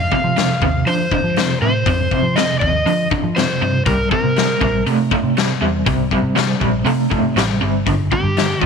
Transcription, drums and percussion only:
0.12 kick
0.36 snare, open hi-hat
0.62 kick
0.87 open hi-hat
1.11 kick
1.36 snare, open hi-hat
1.86 kick, open hi-hat
2.11 kick
2.36 snare, open hi-hat
2.61 kick
2.87 open hi-hat
3.11 kick
3.36 snare, open hi-hat
3.86 kick, open hi-hat
4.11 kick
4.36 snare, open hi-hat
4.61 kick
4.86 open hi-hat
5.11 kick
5.37 snare, open hi-hat
5.86 kick, open hi-hat
6.11 kick
6.36 snare, open hi-hat
6.61 kick
6.86 open hi-hat
7.11 kick
7.36 snare, open hi-hat
7.87 kick, open hi-hat
8.12 kick
8.37 snare, open hi-hat
8.61 kick

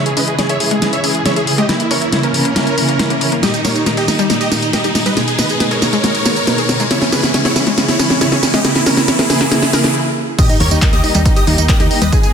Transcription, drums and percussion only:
0.06 closed hi-hat
0.17 open hi-hat
0.28 closed hi-hat
0.39 snare, closed hi-hat
0.49 closed hi-hat
0.60 open hi-hat
0.71 closed hi-hat
0.82 snare, closed hi-hat
0.93 closed hi-hat
1.04 open hi-hat
1.15 closed hi-hat
1.26 snare, closed hi-hat
1.36 closed hi-hat
1.47 open hi-hat
1.58 closed hi-hat
1.69 snare, closed hi-hat
1.80 closed hi-hat
1.91 open hi-hat
2.02 closed hi-hat
2.12 snare, closed hi-hat
2.23 closed hi-hat
2.34 open hi-hat
2.45 closed hi-hat
2.56 snare, closed hi-hat
2.67 closed hi-hat
2.78 open hi-hat
2.89 closed hi-hat
2.99 snare, closed hi-hat
3.10 closed hi-hat
3.21 open hi-hat
3.32 closed hi-hat
3.43 snare, closed hi-hat, tambourine
3.54 closed hi-hat, tambourine
3.65 snare, open hi-hat, tambourine
3.76 closed hi-hat, tambourine
3.86 snare, closed hi-hat, tambourine
3.97 closed hi-hat, tambourine
4.08 snare, open hi-hat, tambourine
4.19 closed hi-hat, tambourine
4.30 snare, closed hi-hat, tambourine
4.41 closed hi-hat, tambourine
4.52 snare, open hi-hat, tambourine
4.62 closed hi-hat, tambourine
4.73 snare, closed hi-hat, tambourine
4.84 closed hi-hat, tambourine
4.95 snare, open hi-hat, tambourine
5.06 closed hi-hat, tambourine
5.17 snare, closed hi-hat, tambourine
5.28 closed hi-hat, tambourine
5.39 snare, open hi-hat, tambourine
5.49 closed hi-hat, tambourine
5.60 snare, closed hi-hat, tambourine
5.71 closed hi-hat, tambourine
5.82 snare, open hi-hat, tambourine
5.93 closed hi-hat, tambourine
6.04 snare, closed hi-hat, tambourine
6.15 closed hi-hat, tambourine
6.25 snare, open hi-hat, tambourine
6.36 closed hi-hat, tambourine
6.47 snare, closed hi-hat, tambourine
6.58 closed hi-hat, tambourine
6.69 snare, open hi-hat, tambourine
6.80 closed hi-hat, tambourine
6.91 snare, closed hi-hat, tambourine
7.02 snare, closed hi-hat, tambourine
7.12 snare, open hi-hat, tambourine
7.23 snare, closed hi-hat, tambourine
7.34 snare, closed hi-hat, tambourine
7.45 snare, closed hi-hat, tambourine
7.56 snare, open hi-hat, tambourine
7.67 snare, closed hi-hat, tambourine
7.78 snare, closed hi-hat, tambourine
7.89 snare, closed hi-hat, tambourine
7.99 snare, open hi-hat, tambourine
8.10 snare, closed hi-hat, tambourine
8.21 snare, closed hi-hat, tambourine
8.32 snare, closed hi-hat, tambourine
8.43 snare, open hi-hat, tambourine
8.54 snare, closed hi-hat, tambourine
8.65 snare, closed hi-hat, tambourine
8.75 snare, closed hi-hat, tambourine
8.86 snare, open hi-hat, tambourine
8.97 snare, closed hi-hat, tambourine
9.08 snare, closed hi-hat, tambourine
9.19 snare, closed hi-hat, tambourine
9.30 snare, open hi-hat, tambourine
9.41 snare, closed hi-hat, tambourine
9.52 snare, closed hi-hat, tambourine
9.62 snare, closed hi-hat, tambourine
9.73 snare, open hi-hat, tambourine
9.84 snare, closed hi-hat, tambourine
10.39 kick, closed hi-hat, tambourine, crash
10.49 closed hi-hat, tambourine
10.60 open hi-hat
10.71 closed hi-hat, tambourine
10.82 kick, clap, closed hi-hat, tambourine
10.93 closed hi-hat, tambourine
11.04 open hi-hat
11.15 closed hi-hat, tambourine
11.26 kick, closed hi-hat, tambourine
11.36 closed hi-hat, tambourine
11.47 open hi-hat
11.58 closed hi-hat, tambourine
11.69 kick, clap, closed hi-hat, tambourine
11.80 closed hi-hat, tambourine
11.91 open hi-hat
12.02 closed hi-hat, tambourine
12.12 kick, closed hi-hat, tambourine
12.23 closed hi-hat, tambourine

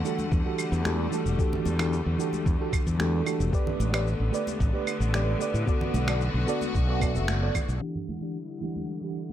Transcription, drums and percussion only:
0.05 shaker
0.19 high conga, shaker
0.32 kick, shaker
0.58 claves, shaker
0.73 shaker
0.85 finger snap, high conga, shaker
1.12 shaker
1.26 shaker
1.39 kick, shaker
1.53 low conga
1.65 high conga, shaker
1.79 finger snap, claves, shaker
1.93 shaker
2.20 shaker
2.33 high conga, shaker
2.46 kick, shaker
2.73 kick, claves, shaker
2.87 shaker
3.00 finger snap, high conga, shaker
3.26 claves, shaker
3.40 shaker
3.53 kick, shaker
3.67 low conga
3.80 high conga, shaker
3.94 finger snap, claves, shaker
4.07 shaker
4.34 shaker
4.47 high conga, shaker
4.60 kick, shaker
4.87 claves, shaker
5.01 shaker
5.14 finger snap, high conga, shaker
5.41 shaker
5.55 shaker
5.67 kick, shaker
5.81 low conga
5.94 high conga, shaker
6.08 finger snap, claves, shaker
6.21 shaker
6.48 shaker
6.61 high conga, shaker
6.75 kick, shaker
7.01 kick, claves, shaker
7.15 shaker
7.28 finger snap, high conga, shaker
7.55 kick, low conga, claves, shaker
7.69 shaker
7.82 shaker
7.96 low conga
8.08 muted conga, high conga
8.22 claves, shaker
8.62 muted conga
8.76 high conga
9.15 claves, shaker
9.30 shaker

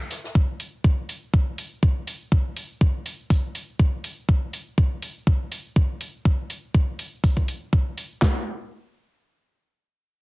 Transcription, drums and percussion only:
0.11 snare, open hi-hat, tambourine
0.24 snare
0.35 kick
0.60 open hi-hat
0.84 kick
1.09 open hi-hat
1.34 kick
1.58 open hi-hat
1.83 kick
2.07 open hi-hat
2.32 kick
2.57 open hi-hat
2.81 kick
3.06 open hi-hat
3.30 kick, open hi-hat
3.55 open hi-hat
3.79 kick
4.04 open hi-hat
4.29 kick
4.53 open hi-hat
4.78 kick
5.02 open hi-hat
5.27 kick
5.52 open hi-hat
5.76 kick
6.01 open hi-hat
6.25 kick
6.50 open hi-hat
6.75 kick
6.99 open hi-hat
7.24 kick, open hi-hat
7.37 kick
7.48 open hi-hat
7.73 kick
7.97 open hi-hat
8.22 kick, snare, clap

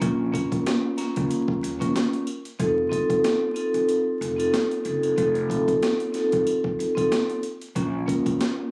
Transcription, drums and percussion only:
0.02 kick, closed hi-hat
0.34 kick, closed hi-hat
0.52 kick, closed hi-hat
0.66 snare, closed hi-hat
0.98 snare, closed hi-hat
1.16 kick, closed hi-hat
1.31 closed hi-hat
1.48 kick
1.64 closed hi-hat
1.81 kick, closed hi-hat
1.96 snare, closed hi-hat
2.13 closed hi-hat
2.27 closed hi-hat
2.45 closed hi-hat
2.60 kick, closed hi-hat
2.92 kick, closed hi-hat
3.10 kick, closed hi-hat
3.24 snare, closed hi-hat
3.56 closed hi-hat
3.74 closed hi-hat
3.89 closed hi-hat
4.22 closed hi-hat
4.40 closed hi-hat
4.54 snare, closed hi-hat
4.71 closed hi-hat
4.85 closed hi-hat
5.03 closed hi-hat
5.18 kick, closed hi-hat
5.35 closed hi-hat
5.50 kick, closed hi-hat
5.68 kick, closed hi-hat
5.82 snare, closed hi-hat
6.00 closed hi-hat
6.14 snare, closed hi-hat
6.32 kick, closed hi-hat
6.47 closed hi-hat
6.64 kick
6.80 closed hi-hat
6.97 kick, closed hi-hat
7.12 snare, closed hi-hat
7.30 closed hi-hat
7.43 closed hi-hat
7.61 closed hi-hat
7.76 kick, closed hi-hat
8.08 kick, closed hi-hat
8.26 kick, closed hi-hat
8.41 snare, closed hi-hat

